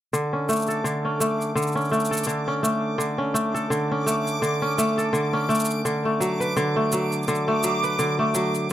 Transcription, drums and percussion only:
0.14 shaker
0.49 shaker
0.52 shaker
0.59 shaker
0.62 shaker
0.67 shaker
0.70 shaker
0.86 shaker
1.21 shaker
1.41 shaker
1.57 shaker
1.62 shaker
1.67 shaker
1.72 shaker
1.77 shaker
1.81 shaker
1.85 shaker
1.89 shaker
1.93 shaker
2.00 shaker
2.05 shaker
2.13 shaker
2.17 shaker
2.24 shaker
2.29 shaker
2.64 shaker
3.00 shaker
3.36 shaker
3.56 shaker
3.72 shaker
4.08 shaker
4.27 shaker
4.43 shaker
4.79 shaker
4.99 shaker
5.14 shaker
5.50 shaker
5.55 shaker
5.60 shaker
5.65 shaker
5.70 shaker
5.86 shaker
6.21 shaker
6.41 shaker
6.57 shaker
6.92 shaker
7.12 shaker
7.23 shaker
7.28 shaker
7.35 shaker
7.63 shaker
7.84 shaker
7.99 shaker
8.35 shaker
8.55 shaker

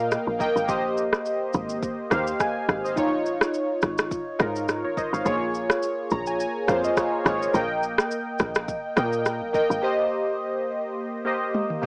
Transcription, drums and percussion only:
0.11 cross-stick, shaker
0.40 kick, shaker
0.57 shaker
0.69 kick, shaker
0.97 shaker
1.13 cross-stick, shaker
1.25 shaker
1.53 kick, shaker
1.69 shaker
1.83 kick, shaker
2.11 kick, cross-stick, shaker
2.27 shaker
2.40 kick, cross-stick, shaker
2.69 kick, cross-stick, shaker
2.85 shaker
2.97 kick, shaker
3.26 shaker
3.41 cross-stick, shaker
3.54 shaker
3.82 kick, cross-stick, shaker
3.98 cross-stick, shaker
4.11 kick, shaker
4.40 kick, cross-stick, shaker
4.56 shaker
4.68 cross-stick, shaker
4.97 kick, shaker
5.14 shaker
5.26 kick, shaker
5.55 shaker
5.70 cross-stick, shaker
5.83 shaker
6.10 kick, shaker
6.27 shaker
6.40 shaker
6.68 kick, cross-stick, shaker
6.84 shaker
6.97 kick, cross-stick, shaker
7.26 kick, cross-stick, shaker
7.42 shaker
7.54 kick, shaker
7.83 shaker
7.98 cross-stick, shaker
8.11 shaker
8.39 kick, cross-stick, shaker
8.55 cross-stick, shaker
8.68 kick, shaker
8.97 kick, cross-stick, shaker
9.13 shaker
9.26 cross-stick, shaker
9.54 kick, shaker
9.71 shaker
11.54 high tom
11.70 mid tom
11.83 mid tom

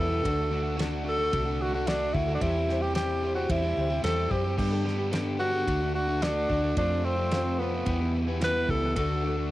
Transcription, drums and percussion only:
0.25 kick, ride bell
0.79 snare, ride bell
1.33 kick, ride bell
1.87 snare, ride bell
2.15 kick
2.41 kick, ride bell
2.69 snare
2.95 snare, ride bell
3.50 kick, ride bell
4.04 snare, ride bell
4.31 kick
4.58 kick, crash
4.87 snare
5.13 snare, ride bell
5.67 kick, ride bell
6.22 snare, ride bell
6.50 kick
6.77 kick, ride bell
7.32 snare, ride bell
7.86 kick, ride bell
8.41 snare, ride bell
8.69 kick
8.96 kick, ride bell

